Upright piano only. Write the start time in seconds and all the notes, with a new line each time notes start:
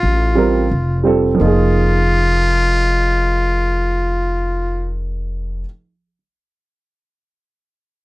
0.35 G3 C4 F4 A#4
1.04 G3 C4 F4 A4
1.35 F3 A#3
1.42 D#4 G#4